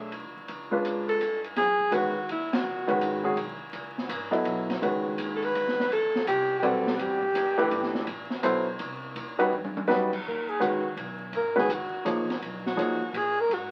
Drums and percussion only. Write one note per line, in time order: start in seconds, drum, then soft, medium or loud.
0.12 ride soft
0.48 ride soft
0.85 hi-hat pedal soft
0.85 ride medium
1.09 ride soft
1.21 hi-hat pedal soft
1.21 ride medium
1.44 ride soft
1.56 snare soft
1.56 ride medium
1.80 kick medium
1.92 hi-hat pedal soft
1.92 ride medium
2.29 ride medium
2.53 snare medium
2.53 ride medium
2.89 ride soft
3.01 hi-hat pedal medium
3.01 ride medium
3.37 ride medium
3.73 ride soft
3.98 snare soft
4.09 hi-hat pedal medium
4.09 ride medium
4.33 ride soft
4.45 ride medium
4.70 snare soft
4.70 ride soft
4.83 ride medium
5.06 kick soft
5.18 hi-hat pedal medium
5.18 ride medium
5.42 ride soft
5.55 ride medium
5.68 snare soft
5.80 snare soft
5.92 ride medium
6.15 snare soft
6.27 hi-hat pedal medium
6.27 ride medium
6.63 ride soft
6.87 snare medium
6.99 ride medium
7.23 kick medium
7.35 hi-hat pedal medium
7.35 ride medium
7.59 kick soft
7.59 ride soft
7.71 ride medium
7.83 snare soft
7.95 snare soft
8.07 ride medium
8.30 snare soft
8.43 hi-hat pedal medium
8.43 ride medium
8.79 ride medium
9.16 ride medium
9.40 ride soft
9.53 mid tom soft
9.65 mid tom medium
9.77 mid tom medium
9.89 snare medium
9.89 hi-hat pedal soft
10.12 kick medium
10.12 crash medium
10.61 hi-hat pedal soft
10.61 ride medium
10.97 ride medium
11.33 ride soft
11.58 snare soft
11.69 hi-hat pedal medium
11.69 ride medium
12.06 hi-hat pedal medium
12.06 ride medium
12.30 snare soft
12.30 ride soft
12.42 ride medium
12.66 snare soft
12.79 hi-hat pedal medium
12.79 ride medium
13.02 kick soft
13.14 ride medium
13.51 ride medium